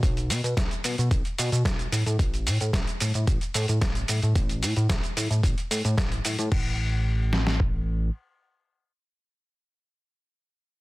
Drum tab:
CC |----------------|----------------|----------------|x---------------|
HH |xxoxxxoxxxoxxxox|xxoxxxoxxxoxxxox|xxoxxxoxxxoxxxox|----------------|
SH |xxxxxxxxxxxxxxxx|xxxxxxxxxxxxxxxx|xxxxxxxxxxxxxxxx|----------------|
SD |----o-------o---|----o-------o---|----o-------o---|------oo--------|
BD |o---o---o---o---|o---o---o---o---|o---o---o---o---|o-------o-------|

CC |----------------|
HH |----------------|
SH |----------------|
SD |----------------|
BD |----------------|